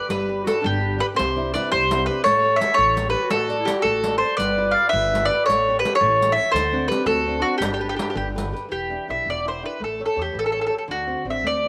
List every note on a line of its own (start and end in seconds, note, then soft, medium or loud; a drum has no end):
0.08 0.45 G1 medium
0.08 0.46 G3 medium
0.08 0.43 G4 medium
0.08 0.45 B4 medium
0.08 riq medium
0.28 0.45 D4 medium
0.28 0.46 G4 soft
0.28 0.45 B4 medium
0.43 0.76 D4 soft
0.43 0.60 F#4 medium
0.43 0.76 G4 soft
0.43 0.65 A4 medium
0.43 0.76 B4 medium
0.47 riq medium
0.61 1.00 G1 loud
0.61 0.99 D3 medium
0.61 0.97 D4 medium
0.66 0.99 G4 medium
0.80 0.97 D4 soft
0.80 0.98 G4 soft
0.80 0.97 B4 soft
0.98 1.13 D4 soft
0.98 1.14 G4 soft
0.98 1.08 G4 medium
0.98 1.14 B4 medium
0.98 1.05 B4 loud
1.15 1.52 C3 medium
1.15 1.51 G4 medium
1.15 1.53 C5 medium
1.19 1.54 C2 medium
1.19 riq medium
1.36 1.52 C4 medium
1.36 1.53 D4 soft
1.36 1.53 E4 medium
1.54 1.83 C4 soft
1.54 1.83 D4 soft
1.54 1.84 E4 medium
1.54 1.71 B4 medium
1.54 1.71 D5 medium
1.54 riq soft
1.71 2.07 C2 loud
1.71 2.07 G3 medium
1.71 2.05 G4 medium
1.71 2.05 C5 loud
1.90 2.07 C4 medium
1.90 2.08 D4 medium
1.90 2.09 E4 medium
1.90 riq medium
2.06 2.22 C4 medium
2.06 2.22 D4 soft
2.06 2.23 E4 medium
2.06 2.23 G4 medium
2.06 2.23 B4 medium
2.24 2.60 A1 loud
2.24 2.60 A3 medium
2.24 2.56 A4 medium
2.24 2.58 C#5 loud
2.24 riq medium
2.43 2.59 G4 medium
2.43 2.59 A4 medium
2.43 2.59 C#5 medium
2.56 2.74 C#5 medium
2.56 2.75 E5 loud
2.60 2.90 G4 medium
2.60 2.90 A4 medium
2.60 2.90 C#5 medium
2.60 riq medium
2.74 3.13 E3 medium
2.74 3.07 A4 medium
2.74 3.09 C#5 loud
2.78 3.13 A1 loud
2.96 3.12 G4 medium
2.96 3.12 A4 medium
2.96 3.13 C#5 medium
2.96 riq medium
3.07 3.23 G4 medium
3.07 3.30 B4 loud
3.13 3.28 G4 soft
3.13 3.28 A4 medium
3.13 3.28 C#5 medium
3.23 3.59 F#4 medium
3.30 3.67 A1 medium
3.30 3.66 A3 medium
3.30 3.69 A4 loud
3.30 riq medium
3.48 3.65 F#4 soft
3.48 3.65 A4 soft
3.48 3.65 D5 medium
3.48 riq soft
3.59 3.77 E4 medium
3.65 3.96 F#4 medium
3.65 3.83 G4 medium
3.65 3.97 A4 soft
3.65 3.97 D5 medium
3.65 riq medium
3.78 4.16 F#4 medium
3.82 4.21 A1 loud
3.82 4.20 A3 medium
3.82 4.17 A4 loud
3.82 riq soft
4.03 4.21 F#4 soft
4.03 4.21 A4 soft
4.03 4.21 D5 soft
4.03 riq medium
4.18 4.36 A4 medium
4.18 4.36 C5 medium
4.22 4.37 F#4 soft
4.22 4.37 A4 soft
4.22 4.37 D5 medium
4.37 4.74 G1 medium
4.37 4.76 G3 medium
4.37 4.73 B4 medium
4.37 4.73 D5 loud
4.37 riq medium
4.57 4.74 F4 medium
4.57 4.74 G4 medium
4.57 4.75 B4 medium
4.71 5.05 F4 soft
4.71 4.88 D5 loud
4.71 4.89 F5 medium
4.76 5.05 G4 medium
4.76 5.06 B4 medium
4.89 5.25 B4 medium
4.89 5.25 E5 loud
4.93 5.28 G1 loud
4.93 5.30 D3 medium
5.13 5.29 F4 medium
5.13 5.29 G4 soft
5.13 5.30 B4 soft
5.13 riq medium
5.25 5.44 B4 medium
5.25 5.44 D5 medium
5.30 5.44 F4 medium
5.30 5.45 G4 soft
5.30 5.45 B4 medium
5.44 5.83 A1 medium
5.44 5.83 A3 medium
5.44 5.80 A4 medium
5.44 5.79 C#5 loud
5.50 riq medium
5.69 5.84 G4 medium
5.69 5.85 A4 soft
5.69 5.86 C#5 medium
5.79 5.98 G4 medium
5.79 5.95 B4 medium
5.85 6.13 G4 soft
5.85 6.14 A4 soft
5.85 6.14 C#5 medium
5.85 riq medium
5.95 6.31 C#5 loud
5.99 6.35 A1 loud
5.99 6.33 A4 medium
6.04 6.37 E3 medium
6.21 6.38 G4 medium
6.21 6.38 A4 soft
6.21 6.38 C#5 medium
6.21 riq medium
6.32 6.52 C#5 medium
6.32 6.50 E5 loud
6.39 6.52 G4 soft
6.39 6.52 A4 soft
6.39 6.52 C#5 medium
6.52 6.88 D2 medium
6.52 6.89 D3 medium
6.52 6.86 A4 medium
6.52 6.88 C5 medium
6.56 riq medium
6.72 6.89 C4 medium
6.72 6.89 D4 medium
6.72 6.90 F#4 medium
6.88 7.19 C4 soft
6.88 7.19 D4 soft
6.88 7.20 F#4 medium
6.88 7.05 G4 medium
6.88 7.05 B4 medium
6.88 riq medium
7.05 7.41 D2 loud
7.05 7.42 A3 medium
7.05 7.38 F#4 medium
7.05 7.41 A4 loud
7.26 7.41 C4 soft
7.26 7.42 D4 soft
7.26 7.41 F#4 medium
7.39 7.57 C4 medium
7.39 7.57 D4 medium
7.39 7.57 D4 soft
7.39 7.57 F#4 medium
7.58 7.96 G1 medium
7.58 8.32 D4 medium
7.58 7.64 G4 medium
7.58 riq medium
7.62 7.79 G3 medium
7.62 7.73 G4 medium
7.74 7.80 G4 medium
7.79 7.96 G4 soft
7.79 7.88 G4 soft
7.79 7.96 A4 soft
7.79 7.96 B4 medium
7.89 7.95 G4 medium
7.96 8.01 G4 soft
7.96 8.28 G4 medium
7.96 8.28 A4 soft
7.96 8.28 B4 soft
7.96 riq medium
8.02 8.09 G4 medium
8.10 8.51 D3 medium
8.10 8.16 G4 soft
8.15 8.52 G1 loud
8.15 8.27 G4 medium
8.15 riq soft
8.35 8.51 G4 medium
8.35 8.52 A4 soft
8.35 8.52 B4 medium
8.35 riq medium
8.53 8.67 G4 soft
8.53 8.68 A4 soft
8.53 8.68 B4 medium
8.53 riq soft
8.69 8.96 E1 medium
8.69 9.07 E3 soft
8.69 9.07 G4 medium
8.90 9.07 D4 soft
8.90 9.08 E4 soft
8.90 9.08 G4 soft
9.08 9.21 B1 medium
9.08 9.38 D4 soft
9.08 9.39 E4 soft
9.08 9.39 G4 soft
9.08 9.28 E5 medium
9.25 9.62 E1 medium
9.25 9.63 B2 soft
9.30 9.47 D5 medium
9.44 9.62 D4 soft
9.44 9.61 E4 soft
9.44 9.62 G4 soft
9.44 9.64 C5 medium
9.63 9.77 D4 soft
9.63 9.77 E4 soft
9.63 9.78 G4 soft
9.63 9.81 B4 medium
9.80 10.06 A1 medium
9.80 10.16 A3 soft
9.84 10.01 A4 soft
9.99 10.15 G4 soft
9.99 10.15 A4 soft
9.99 10.16 C#5 soft
10.06 10.20 A4 medium
10.16 10.29 E2 medium
10.16 10.46 G4 soft
10.16 10.47 A4 soft
10.16 10.47 C#5 soft
10.22 10.37 G4 medium
10.33 10.71 A1 medium
10.33 10.70 E3 soft
10.39 10.45 A4 medium
10.46 10.51 A4 medium
10.52 10.68 G4 soft
10.52 10.59 A4 medium
10.52 10.68 A4 soft
10.52 10.68 C#5 soft
10.61 10.65 A4 medium
10.66 10.84 G4 soft
10.66 10.74 A4 medium
10.66 10.85 A4 soft
10.66 10.85 C#5 soft
10.78 10.83 A4 soft
10.88 11.13 D2 medium
10.88 11.25 D3 medium
10.88 11.25 F#4 medium
11.06 11.24 C4 soft
11.06 11.24 D4 soft
11.06 11.25 F#4 soft
11.25 11.37 A1 medium
11.25 11.56 C4 soft
11.25 11.56 D4 soft
11.25 11.56 F#4 soft
11.30 11.46 E5 medium
11.41 11.68 D2 medium
11.41 11.68 A3 medium
11.47 11.68 D5 medium
11.65 11.68 C4 soft